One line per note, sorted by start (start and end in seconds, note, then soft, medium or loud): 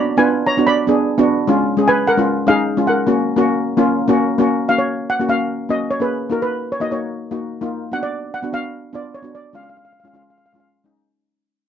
0.00 0.15 D5 medium
0.00 0.18 B5 loud
0.17 0.41 B3 medium
0.17 0.41 D4 medium
0.17 0.42 F4 medium
0.17 0.46 B4 medium
0.17 0.48 G#5 loud
0.47 0.66 C#5 medium
0.47 0.68 A#5 medium
0.57 0.75 B3 medium
0.57 0.76 D4 medium
0.57 0.76 F#4 medium
0.67 1.24 D5 medium
0.67 1.23 B5 loud
0.87 1.05 B3 medium
0.87 1.06 D4 medium
0.87 1.06 G#4 medium
1.18 1.36 B3 medium
1.18 1.36 D4 medium
1.18 1.36 F#4 loud
1.47 1.66 G#3 medium
1.47 1.66 C#4 medium
1.47 1.66 F4 loud
1.77 2.01 G#3 medium
1.77 2.02 C#4 medium
1.77 2.02 G#4 medium
1.88 2.07 B4 medium
1.88 2.08 G#5 loud
2.07 2.46 A#4 medium
2.07 2.49 F#5 loud
2.17 2.36 G#3 medium
2.17 2.36 C#4 medium
2.17 2.36 F4 medium
2.47 2.65 G#3 medium
2.47 2.66 C#4 medium
2.47 2.66 D#4 medium
2.47 2.86 G#4 medium
2.47 2.89 F5 loud
2.77 2.96 G#3 medium
2.77 2.96 C#4 medium
2.77 2.96 F4 medium
2.87 4.25 A#4 medium
2.87 4.24 F#5 medium
3.07 3.26 A#3 medium
3.07 3.26 C#4 medium
3.07 3.26 F#4 medium
3.36 3.62 A#3 medium
3.36 3.62 C#4 medium
3.36 3.62 F#4 loud
3.77 3.96 A#3 medium
3.77 3.96 C#4 medium
3.77 3.97 F4 loud
4.08 4.26 A#3 medium
4.08 4.27 C#4 medium
4.08 4.27 F#4 loud
4.38 4.57 A#3 medium
4.38 4.57 C#4 medium
4.38 4.58 F#4 medium
4.68 4.99 A#3 medium
4.68 5.00 C#4 medium
4.68 5.00 F#4 medium
4.68 4.79 F5 loud
4.78 5.07 C#5 medium
5.10 5.19 F#5 medium
5.19 5.26 A#3 medium
5.19 5.26 C#4 medium
5.19 5.26 F#4 medium
5.29 5.53 A#3 medium
5.29 5.54 C#4 medium
5.29 5.54 F#4 medium
5.29 5.71 F5 medium
5.69 5.88 A#3 medium
5.69 5.88 C#4 medium
5.69 5.88 F#4 medium
5.69 5.89 D#5 medium
5.91 6.01 C#5 medium
6.00 6.18 A#3 medium
6.00 6.18 C#4 medium
6.00 6.19 G#4 medium
6.00 6.32 B4 medium
6.30 6.60 A#3 medium
6.30 6.61 D#4 medium
6.30 6.61 F#4 medium
6.30 6.42 A#4 medium
6.42 6.73 B4 medium
6.72 6.82 C#5 medium
6.80 6.87 A#3 medium
6.80 6.87 D#4 medium
6.80 6.88 F#4 medium
6.80 6.92 D#5 medium
6.91 7.15 A#3 medium
6.91 7.16 D#4 medium
6.91 7.16 F#4 medium
6.91 7.29 C#5 medium
7.31 7.50 A#3 medium
7.31 7.50 D#4 medium
7.31 7.50 F#4 medium
7.61 7.80 A#3 medium
7.61 7.80 D#4 medium
7.61 7.81 F4 medium
7.92 8.22 B3 medium
7.92 8.23 D4 medium
7.92 8.23 F#4 medium
7.92 8.03 F#5 loud
8.03 8.31 D5 medium
8.34 8.52 F#5 medium
8.43 8.49 B3 medium
8.43 8.49 D4 medium
8.43 8.50 F#4 medium
8.53 8.77 B3 medium
8.53 8.77 D4 medium
8.53 8.78 F#4 medium
8.53 8.95 F5 medium
8.93 9.11 B3 medium
8.93 9.12 D4 medium
8.93 9.12 F4 medium
8.93 9.15 D5 medium
9.14 9.35 C#5 medium
9.23 9.41 B3 medium
9.23 9.42 D4 medium
9.23 9.42 F#4 medium
9.35 9.55 D5 medium
9.53 9.84 G#3 medium
9.53 9.84 C#4 medium
9.53 9.85 F4 medium
9.53 9.62 F5 medium
9.63 9.68 F5 medium
9.69 9.76 F5 medium
9.77 9.84 F5 soft
9.85 9.92 F5 soft
9.93 9.99 F5 soft
10.00 10.10 G#3 medium
10.00 10.07 F5 medium
10.05 10.11 C#4 medium
10.05 10.11 F4 medium
10.05 10.14 F5 soft
10.13 10.38 G#3 medium
10.13 10.39 C#4 medium
10.13 10.39 F4 medium
10.13 10.21 F5 medium
10.22 10.29 F5 soft
10.30 10.37 F5 medium
10.38 10.44 F5 soft
10.46 10.52 F5 medium
10.53 10.73 G#3 medium
10.53 10.73 C#4 medium
10.53 10.73 F4 medium
10.53 10.59 F5 soft
10.60 10.67 F5 medium
10.84 11.03 G#3 medium
10.84 11.03 C#4 medium
10.84 11.04 D#4 medium